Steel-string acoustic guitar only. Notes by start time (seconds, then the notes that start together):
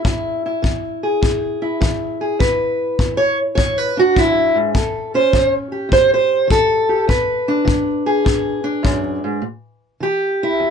Already playing: G#4
0.05 E2 E4
0.46 E4
0.62 E3
1.03 G#4
1.22 E2
1.62 E4
1.81 E3
2.21 G#4
2.39 E2 B4
2.99 E3
3.17 C#5
3.55 E2 C#5
3.78 B4
3.97 D4 F#4
4.15 F#2 E4
4.55 G#2
4.75 A2 A4
5.14 C#4 C5
5.33 E3
5.72 G4
5.89 E2 C5
6.14 C5
6.48 E3 A4
6.89 G4
7.07 E2 B4
7.48 D4
7.65 E3
8.06 G#4
8.25 E2
8.64 D4
8.83 F#2
9.24 G#2
9.42 A2
10.00 E3 G4
10.43 E4
10.60 E2